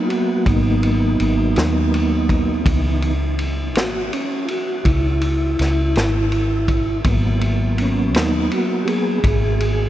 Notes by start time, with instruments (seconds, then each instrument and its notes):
Already playing: tonewheel organ F#3 A#3 B3
0.05 tonewheel organ F4
0.09 tonewheel organ F#4, ride
0.45 fingered electric bass G#1, tonewheel organ D#4, kick, ride
0.83 ride
1.20 fingered electric bass G#1, ride
1.56 fingered electric bass D#2, snare, ride
1.94 ride
2.29 kick, ride
2.63 fingered electric bass C#2, tonewheel organ E3 B3 D#4, kick, ride
3.02 ride
3.39 ride
3.75 fingered electric bass G#1, tonewheel organ F#4, snare, ride
4.13 tonewheel organ C#4, ride
4.45 tonewheel organ F4, ride
4.50 tonewheel organ F#4
4.85 fingered electric bass C#2, tonewheel organ E4, kick, ride
5.21 ride
5.59 fingered electric bass C#2, snare, ride
5.96 fingered electric bass G#1, snare, ride
6.32 ride
6.68 kick, ride
7.04 fingered electric bass G#1, tonewheel organ F#3 A#3 B3, kick, ride
7.41 ride
7.78 tonewheel organ C#4, ride
8.14 fingered electric bass D#2, tonewheel organ D#4, snare, ride
8.52 tonewheel organ F#4, ride
8.83 tonewheel organ F#3 A#3 B3 G4
8.87 tonewheel organ G#4, ride
9.24 fingered electric bass G#1, kick, ride
9.60 ride